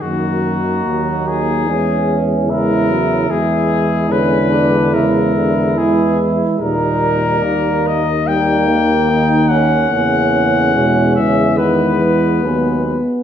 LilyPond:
<<
  \new Staff \with { instrumentName = "Cornet" } { \time 4/4 \key e \lydian \tempo 4 = 72 fis'4. gis'4 r8 ais'4 | gis'4 b'4 ais'4 gis'8 r8 | ais'4. dis''8 g''4. fis''8~ | fis''4. e''8 b'4. r8 | }
  \new Staff \with { instrumentName = "Flugelhorn" } { \time 4/4 \key e \lydian dis'2 cis'4 e'4 | e'4 cis'8 d'8 e'4 e'4 | dis'4 ais4 ais4 dis'8 cis'8 | cis'2 b4 gis8 r8 | }
  \new Staff \with { instrumentName = "Euphonium" } { \clef bass \time 4/4 \key e \lydian ais2 gis4 gis8 fis8 | gis2 gis4 gis4 | g2 g8 ais4. | ais4 gis4 gis4 b8 b8 | }
  \new Staff \with { instrumentName = "Trombone" } { \clef bass \time 4/4 \key e \lydian dis8 r8 fis4 e4 cis4 | e4 d4 cis8 d8 e4 | ais,4 dis2. | cis4 b,8 cis8 dis8 e8 fis8 r8 | }
  \new Staff \with { instrumentName = "Tuba" } { \clef bass \time 4/4 \key e \lydian fis,4 dis,4 e,2 | e,1 | dis,1 | e,2. dis,8 r8 | }
>>